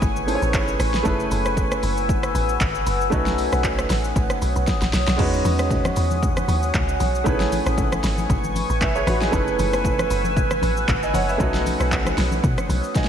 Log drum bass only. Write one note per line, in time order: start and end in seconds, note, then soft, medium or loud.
0.02 0.38 G#1 loud
0.42 0.75 A1 loud
0.79 1.02 A1 loud
1.05 1.28 F#1 loud
1.31 1.77 F#1 loud
1.83 2.29 F#1 medium
2.35 2.58 A1 loud
2.61 2.84 G#1 loud
2.87 3.09 F#1 loud
3.12 3.48 B1 loud
3.52 3.86 B1 loud
3.90 4.13 A1 loud
4.16 4.28 A1 loud
4.42 4.54 B1 medium
4.56 4.66 B1 loud
4.82 4.92 A1 medium
4.93 5.06 B1 medium
5.08 5.18 B1 medium
5.19 5.42 E2 loud
5.45 5.91 E2 loud
5.97 6.43 E2 medium
6.48 6.71 D#2 loud
6.74 6.97 C#2 medium
7.00 7.23 B1 medium
7.26 7.62 A1 loud
7.66 7.99 A1 loud
8.04 8.27 G#1 medium
8.30 8.65 G#1 loud
8.70 9.03 A1 loud
9.07 9.30 A1 loud
9.33 9.56 F#1 loud
9.59 10.05 F#1 loud
10.11 10.56 F#1 medium
10.62 10.85 A1 medium
10.88 11.11 G#1 loud
11.14 11.37 F#1 loud
11.40 11.76 B1 loud
11.80 12.13 B1 loud
12.18 12.40 B1 loud
12.44 12.56 B2 loud
12.69 12.82 B1 loud